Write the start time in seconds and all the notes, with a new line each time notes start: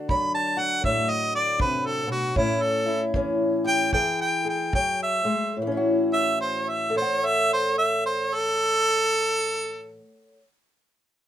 Already playing: D3 D4 F#4
0.09 F#3 B5, kick
0.35 A5
0.57 F#4 F#5
0.84 A2 E5, kick
1.10 D#5
1.35 D5
1.60 C3 B4, kick
1.86 A4
2.07 B2
2.12 F#4
2.36 A2 C#4 E4, kick
2.62 A4
2.86 E4
3.14 E3 C#4, kick
3.64 G4 G5
3.93 E3 G#4 G5, kick
4.21 G5
4.45 G#4
4.49 G5
4.73 F#3 G5, kick
5.03 E5
5.25 G#3
5.57 A2
5.62 E3
5.67 C#4
5.72 E4
5.77 F#4
6.13 E5
6.41 C5
6.69 E5
6.90 A4
6.96 C5 C#5
7.02 F#5
7.26 E5
7.53 C5
7.78 E5
8.06 C5
8.35 A4